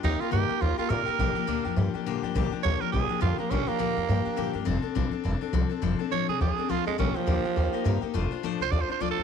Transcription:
0.03 D#2 C3 D#3 A#3 D#4 G4 A#4
0.20 A#3 D#4 F4 G4 A#4, muted upright bass stroke
0.31 G2 C3 D#3 A#3 D#4 G4 A#4
0.49 A#3 D#4 G4 A#4, muted upright bass stroke
0.60 D#2 A#3 D#4 F4 G4 A#4
0.77 A#3 D#4 F4 G4 A#4
0.89 A#2 C3 D#3 A#3 D#4 G4 A#4
1.05 A#3 D#4 G4 A#4, muted upright bass stroke
1.19 A#1 A#2 D3 F3 A#3 D4 G4
1.35 F3 A#3 D4 G4, muted upright bass stroke
1.47 D2 A#2 D3 F3 A#3 D4 G4
1.64 F2 F3 A#3 D4 G4
1.76 G2 F3 A#3 D4 G4
1.94 F3 A#3 D4 G4, muted upright bass stroke
2.06 G2 A#2 D3 F3 A#3 D4 G4
2.23 G2 F3 A#3 D4 G4
2.35 A#1 A#2 D3 F3 A#3 D4 G4
2.52 F3 A#3 D4 G4, muted upright bass stroke
2.63 D#2 A#2 D3 F3 A#3 D4 G4 C#5
2.80 F3 A#3 D4 G4 A#4
2.92 A#1 F3 A#3 D4 G4 G#4
3.09 F3 A#3 D4 G4, muted upright bass stroke
3.20 F2 A#2 D3 F3 A#3 D4 F4 G4
3.38 F3 A#3 D4 G4
3.51 A#1 A#2 D3 F3 A#3 C#4 D4 G4
3.67 F3 A#3 D4 G4, muted upright bass stroke
3.79 D2 A#2 D3 F3 A#3 D4 G4
3.96 F2 F3 A#3 D4 G4
4.08 G2 F3 A#3 D4 G4
4.25 F3 A#3 D4 G4, muted upright bass stroke
4.36 G2 A#2 D3 F3 A#3 D4 G4
4.53 G2 F3 A#3 D4 G4
4.65 F1 F3 C4 D4 A4
4.82 C4 D4 A4, muted upright bass stroke
4.95 A#1 F3 C4 D4 A4
5.11 C4 D4 A4, muted upright bass stroke
5.24 F1 F3 C4 D4 A4
5.41 C4 D4 A4, muted upright bass stroke
5.53 C2 F3 C4 D4 A4
5.69 C4 D4 A4
5.82 F1 F3 C4 D4 A4
5.99 C4 D4 A4, muted upright bass stroke
6.11 A1 F3 C4 D4 A4 C#5
6.28 C2 C4 D4 G#4 A4
6.41 D#2 F3 C4 D4 G#4 A4
6.58 C4 D4 A4, muted upright bass stroke
6.69 D2 F3 C4 D4 F4 A4
6.85 D#2 G#3 C4 D4 A4
6.98 A#1 A#2 D3 F3 A#3 C#4 D4 G4
7.14 F3 A#3 D4 G4, muted upright bass stroke
7.27 D#2 A#2 D3 F3 A#3 D4 G4
7.44 F3 A#3 D4 G4
7.56 D#2 A#3 D#4 G4 A#4
7.72 A#3 D#4 G4 A#4, muted upright bass stroke
7.84 G2 C3 D#3 A#3 D#4 G4 A#4
8.01 A#3 D#4 G4 A#4, muted upright bass stroke
8.14 F1 F3 A3 D4 F4 C5
8.31 D4 F4 C5, muted upright bass stroke
8.43 A1 F3 A3 D4 F4 C5
8.60 C2 D4 F4 C5
8.71 D#2 A3 D4 F4 C5 D5
8.81 C5
8.88 D4 F4 C5, muted upright bass stroke
9.00 D2 F3 A3 D4 F4 C5 D5
9.11 A4
9.17 D#2 D4 F4 C5

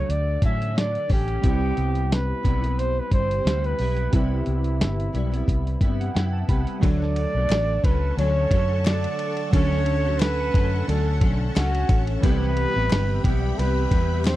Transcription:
Already playing: F#3 A3 D4 A4 C#5 F#5
0.09 D2 D5, closed hi-hat
0.42 A2 D3 F#3 A3 C#4 E5, kick, closed hi-hat
0.62 closed hi-hat
0.75 D3 F#3 A3 D5, snare, closed hi-hat
0.95 closed hi-hat
1.08 A1 D3 A3 C#4 G4, kick, open hi-hat
1.28 closed hi-hat
1.41 C2 C3 G3 B3 C4 E4, kick, closed hi-hat
1.46 G4
1.77 C2, closed hi-hat
1.95 closed hi-hat
2.12 B4, snare, closed hi-hat
2.43 B1 C3 G3 B3 E4, kick, closed hi-hat
2.61 G3 B3 E4, closed hi-hat
2.79 C5, closed hi-hat
2.99 B4
3.10 G1 C3 G3 E4 C5, kick, closed hi-hat
3.31 closed hi-hat
3.44 D2 C3 G3 B3 E4, snare, closed hi-hat
3.64 B4, closed hi-hat
3.79 B1 G3 B3 E4, open hi-hat
3.97 closed hi-hat
4.11 C2 C3 G3 B3 C4 E4 G4, kick, closed hi-hat
4.15 B4
4.46 C2, closed hi-hat
4.64 closed hi-hat
4.80 G1, snare, closed hi-hat
5.00 closed hi-hat
5.12 B1 C3 G3 B3 E4, closed hi-hat
5.31 G3 B3 E4, closed hi-hat
5.48 C2, kick, closed hi-hat
5.67 closed hi-hat
5.80 G2 C3 G3 B3 E4 E5, kick, closed hi-hat
6.00 F#5, closed hi-hat
6.14 F#2 C3 B3 E4 G5, snare, closed hi-hat
6.33 A5
6.48 C2 C3 G3 B3 E4 B5, kick, closed hi-hat
6.67 closed hi-hat
6.79 D2 D3 F#3 A3 D4 A4 D5 F#5 A5 C#6, kick, ride
6.85 A4
7.02 snare
7.16 ride
7.35 B1 F#3 A3
7.50 A1, snare, clap, ride
7.84 C#2 F#3 A3 C#4 B4, kick, ride
8.17 D2 D3 F#3 A3 C#4 C#5, ride
8.51 F#2 D3 F#3 A3 C#4, kick, ride
8.84 D3 F#3 A3 D5, snare, clap, ride
9.04 ride
9.19 ride
9.37 ride
9.50 D2 D3 F#3 A3 C#4 D4 C#5, kick, ride
9.54 C#4 A4
9.73 snare
9.86 ride
10.04 F#3 A3 C#4
10.20 B4, snare, clap, ride
10.53 F#2 D3 F#3 A3 C#4, kick, ride
10.87 D2 D3 F#3 A3 C#4 A4, ride
11.21 B1 D3 F#3 A3 C#4, kick, ride
11.56 C#2 F#3 A3 C#4 F#4, snare, clap, ride
11.75 ride
11.89 A1, kick, ride
12.07 ride
12.20 C2 C3 E3 G3 B3 C4 B4, kick, ride
12.24 E4 G4 E5 G5 B5
12.43 snare
12.57 ride
12.75 A1 G3 B3 E4
12.90 G1, snare, clap, ride
13.24 B1 G3 B3 E4 G4, kick, ride
13.58 C2 C3 G3 B3 E4 B4, ride
13.91 E2 C3 G3 B3 E4, kick, ride
14.24 C3 G3 E4 C5, snare, clap, ride

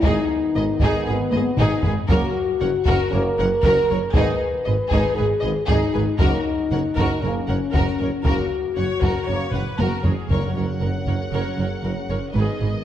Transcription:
0.02 G#1 G#2 D#3 B3 D#4 G#4, taiko
0.54 G#1 G#2 G#4 B4 D#5
0.80 G#1 G#2 D#4 G#4, taiko
1.06 G#1 G#2 B3 G#4 B4
1.31 G#1 G#2 B4 D#5, taiko high
1.35 G#4
1.57 G#1 G#2 D#4 G#4, taiko low-mid
1.83 G#1 G#2 G#4 B4, taiko low
2.08 F#1 F#2 C#3 A#3 F#4 A#4, taiko
2.60 F#1 F#2 A#4 C#5 F#5
2.85 F#1 F#2 F#4 A#4, taiko
3.10 F#1 F#2 C#3 A#3 A#4 C#5
3.37 F#1 F#2 A#4 C#5 F#5
3.62 F#1 F#2 F#4 A#4, taiko
3.90 F#1 F#2 A#4 C#5
4.13 G#1 G#2 D#3 B3 D#4 G#4 B4, taiko
4.65 G#1 G#2 G#4 B4 D#5
4.89 G#1 G#2 D#4 G#4, taiko
5.14 G#1 G#2 D#3 B3 G#4 B4
5.18 G#1 G#4
5.41 G#1 G#2 G#4 B4 D#5
5.66 G#1 G#2 D#4 G#4, taiko
5.94 G#1 G#2 G#4 B4
6.19 F#1 F#2 C#3 A#3 D#4 F#4 A#4, taiko
6.71 F#1 F#2 A#4 C#5 F#5
6.96 F#1 F#2 F#4 A#4, taiko
7.21 F#1 F#2 C#3 A#3 C#4 A#4 C#5
7.47 F#1 F#2 A#4 C#5 F#5
7.71 F#1 F#2 F#4 A#4, taiko
7.99 F#1 F#2 A#4 C#5
8.23 F#1 F#2 C#3 F#4 A#4, taiko
8.27 A#3
8.75 F#1 F#2 C#5 F#5
9.01 F#1 F#2 F#4 A#4, taiko
9.26 F#1 F#2 C#3 A#3 A#4 C#5
9.51 F#1 F#2 B4 C#5 F#5, taiko low-mid
9.78 F#1 F#2 F#4 A#4, taiko high
10.03 F#1 F#2 G#4 A#4 C#5, taiko low
10.28 F#1 F#2 C#3 F#3 C#4 A#4 C#5 F#5, taiko
10.55 F#1 F#2 A#4 C#5
10.80 F#1 F#2 A#4
11.06 F#1 F#2 A#4 C#5, taiko
11.32 F#1 F#2 A#4 C#5
11.57 F#1 F#2 A#4 C#5
11.83 F#1 F#2 A#4
12.09 F#1 F#2 A#4 C#5
12.33 G#1 G#2 D#3 G#3 B3 G#4 B4 D#5
12.38 G#4
12.61 G#1 G#2 G#4 B4

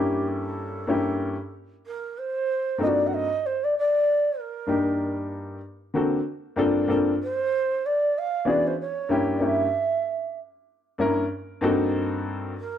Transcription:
Already playing: G2 A#3 C#4 E4 G4
0.28 A4
0.87 G2 A#3 C#4 E4 G4
1.86 A#4
2.18 C5
2.78 G2 A#3 C4 D#4 F4 A4 D#5
2.86 F#4 D5
3.06 F#5
3.14 D#5
3.46 C5
3.63 D5
3.77 D5
4.39 A#4
4.66 G2 A#3 D4 D#4 G4
5.94 D3 A#3 C4 F#4 A4
6.56 G2 A#3 C4 D4 F4 A4
6.87 G2 A#3 C4 D4 F4 A4 A#4
7.23 C5
7.85 D5
8.18 F5
8.45 E3 B3 C#4 D4 F#4 G#4
8.49 D5
8.67 C5
8.80 C#5
9.09 G2 A#3 C#4 E4 G4
9.39 G2 A#3 C#4 E4 G4
9.44 E5
10.98 G2 A#3 C#4 E4 A#4
11.61 G2 A#3 C4 D#4 F#4 A4
12.59 A#4

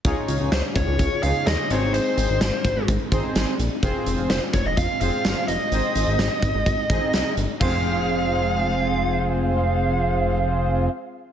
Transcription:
0.05 C#2 C#3 C#4 D#4 F4 G#4 C#5, kick, closed hi-hat
0.28 C#2, closed hi-hat
0.40 C#2
0.52 C#2 C5, snare, closed hi-hat
0.75 C#2 C#5, kick, closed hi-hat
0.87 C#2
0.99 C#2, kick, closed hi-hat
1.23 C#2 D#4 F4 G#4 C#5 F5, closed hi-hat
1.46 D#2 D#5, snare, closed hi-hat
1.70 G#1 G#3 C4 D#4 G#4 C5 C#5, closed hi-hat
1.94 C5, closed hi-hat
2.17 G#1, closed hi-hat
2.29 G#1
2.41 G#1, snare, closed hi-hat
2.65 G#1, kick, closed hi-hat
2.76 G#1
2.88 G#1, kick, closed hi-hat
3.12 G#1 C4 D#4 G#4 C5, kick, closed hi-hat
3.35 G#1, snare, closed hi-hat
3.59 A#1, closed hi-hat
3.83 F1 G#3 C4 F4 G#4 C5, kick, closed hi-hat
4.06 F1, closed hi-hat
4.18 F1
4.30 F1 C5, snare, closed hi-hat
4.54 F1 C#5, kick, closed hi-hat
4.66 F1 D#5
4.77 F1 F5, kick, closed hi-hat
5.01 F1 C4 F4 G#4 C5 F5, closed hi-hat
5.24 G1, snare, closed hi-hat
5.48 F1 D#5, closed hi-hat
5.72 G#1 C4 D#4 G#4 C5, closed hi-hat
5.95 G#1, closed hi-hat
6.07 G#1
6.19 G#1, snare, closed hi-hat
6.42 G#1, kick, closed hi-hat
6.54 G#1
6.66 G#1, kick, closed hi-hat
6.90 G#1 C4 D#4 G#4 D#5, kick, closed hi-hat
7.13 C2, snare, closed hi-hat
7.37 G1, closed hi-hat
7.61 F1 G#3 C4 F4 G#4 C5 F5, kick, crash

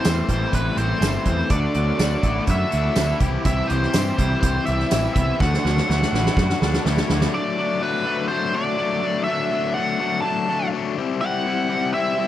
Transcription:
Already playing: A2 E3 C5
0.03 E2 E3 G3 A3 C4, snare, closed hi-hat, tambourine
0.28 A1 A3 C4 E4, kick, closed hi-hat
0.53 A1 G3 B4, kick, closed hi-hat
0.77 A1 A3 C4 C5, closed hi-hat
1.01 G1 E3 A3 C4 E4, snare, closed hi-hat, tambourine
1.25 E2 C4, kick, closed hi-hat
1.50 D2 D3 A3 D4 F#4 D5, kick, closed hi-hat
1.74 D2 F#3 D4 F#4, closed hi-hat
1.98 D2 A3 D4 F#4, snare, closed hi-hat, tambourine
2.02 A3
2.22 A1 D4 E4 F#4, kick, closed hi-hat
2.47 F#2 A3 E5, kick, closed hi-hat
2.70 D2 D4 F#4, closed hi-hat
2.95 D2 A3 D4 E4 F#4, snare, closed hi-hat, tambourine
3.19 C2 C3 E3 C4 E4 G4, kick, closed hi-hat
3.44 C2 C3 E3 C4 E4 G4 E5, kick, closed hi-hat
3.68 C2 E3 C4 E4 G4 C5, closed hi-hat
3.83 snare
3.93 G2 E3 G3 C4 E4 G4, snare, closed hi-hat, tambourine
4.17 C2 C4 E4 G4, kick, closed hi-hat
4.41 C2 G3 C5, kick, closed hi-hat
4.65 C2 E4 G4 E5, closed hi-hat
4.70 C4
4.80 snare
4.90 A1 E3 C4 E4 G4, snare, closed hi-hat, tambourine
5.14 C2 B3 E5, kick, closed hi-hat
5.38 D2 D3 A3 D4 F#4 F#5, kick, snare
5.54 snare
5.64 D2 F#3 D4 F#4, snare
5.77 snare
5.87 D2 A3 D4 F#4, snare
6.02 snare
6.12 A1 D4 E4 F#4, snare
6.26 snare
6.37 F#2 A3, kick, snare
6.50 snare
6.61 D2 D4 F#4, snare
6.73 snare
6.83 D2 A3 D4 E4, snare
6.89 F#4
6.97 snare
7.09 D2 D4, snare
7.21 snare
7.34 F#3 A3 D4 D5
7.57 F#3 A3 D4
7.82 F#3 A3 D4 B4
8.05 F#3 A3 D4
8.28 F#3 A3 D4 C5
8.53 F#3 A3 D4 D5
8.78 F#3 A3 D4
9.02 F#3 A3 D4
9.24 F#3 A3 E5
9.28 D4
9.51 F#3 A3 D4
9.74 F#3 A3 D4 F#5
10.00 F#3 A3 D4
10.22 F#3 A3 D4 A5
10.48 F#3 A3 D4
10.73 F#3 A3 D4
10.97 G3 C4 E4
11.21 G3 C4 E4 F#5
11.46 G3 C4 E4
11.69 G3 C4 E4
11.94 G3 C4 E4 E5
12.19 G3 C4 E4

